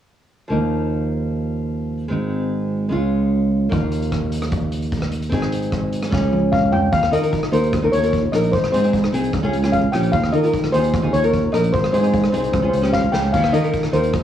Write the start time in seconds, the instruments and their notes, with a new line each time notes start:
0.48 fingered electric bass D#2, nylon-string guitar F3 A#3 D#4
2.08 fingered electric bass G#1, nylon-string guitar G#3 C4 D#4
2.89 fingered electric bass C#2, nylon-string guitar G#3 C#4 F4
3.69 fingered electric bass D#2, nylon-string guitar A#3 D#4 F4, kick, closed hi-hat
3.92 closed hi-hat
4.02 closed hi-hat
4.12 kick, cross-stick, closed hi-hat
4.32 closed hi-hat
4.42 cross-stick, closed hi-hat
4.52 kick, closed hi-hat
4.72 closed hi-hat
4.82 closed hi-hat
4.92 kick, closed hi-hat
5.02 cross-stick
5.12 closed hi-hat
5.22 closed hi-hat
5.30 fingered electric bass G#1, nylon-string guitar C4 D#4 G#4, kick, closed hi-hat
5.42 cross-stick
5.52 closed hi-hat
5.62 closed hi-hat
5.72 kick, cross-stick, closed hi-hat
5.93 closed hi-hat
6.03 cross-stick, closed hi-hat
6.10 fingered electric bass C#2, nylon-string guitar C#4 F4 G#4, kick, snare
6.33 high tom
6.52 steel pan F5, kick, mid tom
6.72 steel pan G5, floor tom
6.92 fingered electric bass D#2, steel pan F5, kick, closed hi-hat
7.03 cross-stick
7.11 fingered electric bass D#3, nylon-string guitar D#4 F4 A#4, steel pan D#5, closed hi-hat
7.21 nylon-string guitar D#4 F4 A#4, closed hi-hat
7.33 kick, closed hi-hat
7.43 cross-stick
7.52 fingered electric bass D#2, nylon-string guitar D#4 F4 A#4, steel pan C5, closed hi-hat
7.64 closed hi-hat
7.73 kick, cross-stick, closed hi-hat
7.82 fingered electric bass D#2, nylon-string guitar D#4 F4 A#4
7.92 fingered electric bass D#2, steel pan C#5, closed hi-hat
8.02 nylon-string guitar D#4 F4 A#4, closed hi-hat
8.13 kick, closed hi-hat
8.32 fingered electric bass A#1, nylon-string guitar D#4 F4 A#4, steel pan D#5, cross-stick, closed hi-hat
8.44 closed hi-hat
8.52 fingered electric bass G#1, steel pan C5, kick, closed hi-hat
8.64 cross-stick
8.72 fingered electric bass G#2, nylon-string guitar C4 D#4 G#4, steel pan C5, closed hi-hat
8.82 nylon-string guitar C4 D#4 G#4, closed hi-hat
8.93 kick, closed hi-hat
9.04 cross-stick
9.12 fingered electric bass C2, nylon-string guitar C4 D#4 G#4, closed hi-hat
9.24 closed hi-hat
9.33 fingered electric bass C#2, kick, cross-stick, closed hi-hat
9.43 fingered electric bass C#2, nylon-string guitar C#4 F4 G#4
9.53 fingered electric bass C#2, closed hi-hat
9.62 nylon-string guitar C#4 F4 G#4, cross-stick, closed hi-hat
9.72 steel pan F5, kick, closed hi-hat
9.92 fingered electric bass A#1, nylon-string guitar C#4 F4 G4, steel pan G5, cross-stick, closed hi-hat
10.03 closed hi-hat
10.12 fingered electric bass D#2, steel pan F5, kick, closed hi-hat
10.23 cross-stick
10.32 fingered electric bass D#3, nylon-string guitar D#4 F4 A#4, steel pan D#5, closed hi-hat
10.43 nylon-string guitar D#4 F4 A#4, closed hi-hat
10.53 kick, closed hi-hat
10.64 cross-stick
10.72 fingered electric bass D#2, nylon-string guitar D#4 F4 G#4, steel pan C5, closed hi-hat
10.84 closed hi-hat
10.94 kick, cross-stick, closed hi-hat
11.02 fingered electric bass D#2, nylon-string guitar D#4 F4 G#4
11.13 fingered electric bass D#2, steel pan C#5, closed hi-hat
11.23 nylon-string guitar D#4 F4 A#4, closed hi-hat
11.34 kick, closed hi-hat
11.52 fingered electric bass A#1, nylon-string guitar D#4 F4 A#4, steel pan D#5, cross-stick, closed hi-hat
11.64 closed hi-hat
11.72 fingered electric bass G#1, steel pan C5, kick, closed hi-hat
11.84 cross-stick
11.92 fingered electric bass G#2, nylon-string guitar C4 D#4 G#4, steel pan C5, closed hi-hat
12.00 nylon-string guitar C4 D#4 G#4, steel pan C5, closed hi-hat
12.07 steel pan C5
12.14 steel pan C5, kick, closed hi-hat
12.22 steel pan C5, cross-stick
12.30 nylon-string guitar C4 D#4 G#4, steel pan C5, closed hi-hat
12.34 fingered electric bass C2, steel pan C5
12.44 steel pan C5, closed hi-hat
12.53 fingered electric bass C#2, steel pan C5, kick, cross-stick, closed hi-hat
12.60 fingered electric bass C#2, nylon-string guitar C#4 F4 G#4, steel pan C5
12.68 steel pan C5
12.73 fingered electric bass C#2, steel pan C5, closed hi-hat
12.81 nylon-string guitar C#4 F4 G4, cross-stick, closed hi-hat
12.93 steel pan F5, kick, snare
13.12 fingered electric bass C#2, nylon-string guitar C#4 F4 G#4, steel pan G5, snare
13.33 fingered electric bass D#2, steel pan F5, kick, closed hi-hat, crash
13.44 cross-stick
13.52 fingered electric bass D#3, nylon-string guitar D#4 F4 A#4, steel pan D#5, closed hi-hat
13.62 nylon-string guitar D#4 F4 A#4, closed hi-hat
13.73 kick, closed hi-hat
13.83 cross-stick
13.92 fingered electric bass D#2, nylon-string guitar D#4 F4 A#4, steel pan C5, closed hi-hat
14.03 closed hi-hat
14.14 kick, cross-stick, closed hi-hat